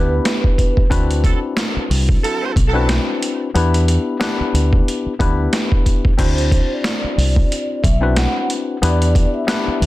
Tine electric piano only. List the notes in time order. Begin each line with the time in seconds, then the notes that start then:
Already playing: B3 D4 E4 G4 B4
0.90 C4 D4 E4 F#4 B4
2.73 C4 D4 E4 F#4 B4
3.54 B3 D4 E4 G4 B4
4.19 B3 D4 E4 G4 B4
5.19 B3 D4 E4 G4 B4
6.17 C4 D4 E4 F#4 C5
8.01 C4 D4 E4 F#4 B4
8.82 B3 D4 E4 G4 B4
9.47 B3 D4 E4 G4 B4